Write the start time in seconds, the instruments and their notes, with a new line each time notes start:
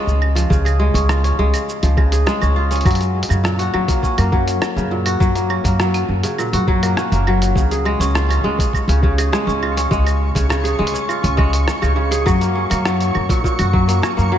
Already playing: kora C#3 G#3 C#4 F4 G#4
0.07 upright bass C#2, cabasa
0.22 claves
0.35 kora F3, closed hi-hat, cabasa
0.50 upright bass C#2, kora C#3, kick, cabasa
0.65 kora G#4, closed hi-hat, cabasa, claves
0.79 kora G#3
0.94 upright bass C#2, kora C#4, kick, closed hi-hat, cabasa
1.09 kora F4, cross-stick, cabasa, claves
1.24 kora C#4, closed hi-hat, cabasa
1.39 upright bass C#2, kora G#3
1.54 closed hi-hat, cabasa, claves
1.69 cabasa
1.83 upright bass C#2, kora F3, closed hi-hat, cabasa
1.97 kora C#3, kick, claves
2.12 kora G#4, closed hi-hat, cabasa
2.26 kora G#3, cross-stick, cabasa
2.41 upright bass C#2, kora C#4, cabasa, claves
2.56 kora F4
2.71 kora C#4, closed hi-hat, cabasa
2.76 closed hi-hat
2.81 closed hi-hat
2.85 upright bass F#2, kora F#3, kick, closed hi-hat, cabasa, claves
2.91 closed hi-hat
2.95 closed hi-hat
3.01 closed hi-hat, cabasa
3.23 closed hi-hat
3.29 upright bass F#2, kora C#3, cabasa, claves
3.44 kora A#2, cross-stick, cabasa
3.58 kora F#4, closed hi-hat, cabasa
3.74 upright bass F#2, kora F#3, claves
3.88 kora A#3, kick, closed hi-hat, cabasa
4.03 kora C#4, kick, cabasa
4.18 upright bass F#2, kora A#3, closed hi-hat, cabasa, claves
4.32 kora F#3, kick
4.48 closed hi-hat, cabasa
4.62 cross-stick, cabasa, claves
4.76 upright bass F#2, kora C#3, cabasa
4.91 kora A#2
5.06 kora F#4, closed hi-hat, cabasa, claves
5.20 upright bass F#2, kora F#3, kick, cabasa
5.35 kora A#3, closed hi-hat, cabasa
5.50 kora C#4, claves
5.64 upright bass F#2, kora A#3, kick, closed hi-hat, cabasa
5.79 kora F#3, cross-stick, cabasa
5.94 closed hi-hat, cabasa, claves
6.09 upright bass F#2
6.23 kora C#3, closed hi-hat, cabasa
6.38 kora A#2, cabasa, claves
6.53 upright bass F#2, kora F#4, closed hi-hat, cabasa
6.67 kora F#3, kick
6.83 kora A#3, closed hi-hat, cabasa, claves
6.97 kora C#4, cross-stick, cabasa
7.12 upright bass F#1, kora A#3, closed hi-hat, cabasa
7.27 kora F#3, claves
7.42 closed hi-hat, cabasa
7.55 upright bass C#2, kora C#3, synth texture C#6, kick, cabasa
7.71 kora G#4, closed hi-hat, cabasa
7.85 kora G#3, claves
7.99 upright bass C#2, kora C#4, closed hi-hat, cabasa
8.15 kora F4, cross-stick, cabasa
8.29 kora C#4, closed hi-hat, cabasa, claves
8.43 upright bass C#2, kora G#3
8.59 kick, closed hi-hat, cabasa
8.73 kick, cabasa, claves
8.88 upright bass C#2, kora C#3, closed hi-hat, cabasa
9.03 kora C#3, kick
9.18 kora G#4, closed hi-hat, cabasa, claves
9.33 kora G#3, cross-stick, cabasa
9.47 upright bass C#2, kora C#4, cabasa
9.62 kora F4, claves
9.77 kora C#4, closed hi-hat, cabasa
9.91 upright bass C#2, kora G#3, kick, cabasa
10.06 closed hi-hat, cabasa, claves
10.35 upright bass C#2, kora C#3, kick, closed hi-hat, cabasa
10.49 kora C#3, cross-stick, cabasa, claves
10.64 kora G#4, closed hi-hat, cabasa
10.79 upright bass C#2, kora G#3
10.87 closed hi-hat
10.94 kora C#4, cabasa
11.09 kora F4, cabasa, claves
11.23 upright bass C#2, kora C#4, closed hi-hat, cabasa
11.37 kora G#3, kick, claves
11.53 closed hi-hat, cabasa
11.68 cross-stick, cabasa
11.82 upright bass C#2, kora C#3, cabasa, claves
11.96 kora C#3
12.11 kora G#4, closed hi-hat, cabasa
12.26 upright bass F#2, kora F#3, kick, cabasa, claves
12.41 kora A#3, closed hi-hat, cabasa
12.55 kora C#4
12.70 upright bass F#2, kora A#3, closed hi-hat, cabasa, claves
12.85 kora F#3, cross-stick, cabasa
13.01 closed hi-hat, cabasa
13.15 upright bass F#2, claves
13.29 kora A#2, kick, closed hi-hat, cabasa
13.44 kora A#2, kick, cabasa
13.59 upright bass F#2, kora F#4, closed hi-hat, cabasa, claves
13.73 kora F#3, kick
13.88 kora A#3, closed hi-hat, cabasa
14.02 kora C#4, cross-stick, cabasa, claves
14.17 upright bass F#2, kora A#3, cabasa
14.32 kora F#3